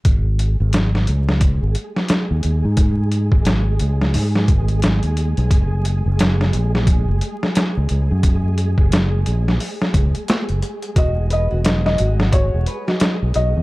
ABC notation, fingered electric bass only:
X:1
M:4/4
L:1/16
Q:"Swing 16ths" 1/4=88
K:F#mix
V:1 name="Fingered electric bass" clef=bass
G,,,3 G,,,3 C,,3 G,,, z3 D,, D,, G,,- | G,,3 G,,,3 C,,2 G,,2 G,,,3 D,,2 B,,, | F,,,3 F,,,3 A,,,3 F,,, z3 C,, C,, F,,- | F,,3 F,,,3 A,,,2 z2 C,, z2 F,,, z2 |
E,,,3 E,,,3 G,,,3 E,,, z3 B,,, B,,, E,, |]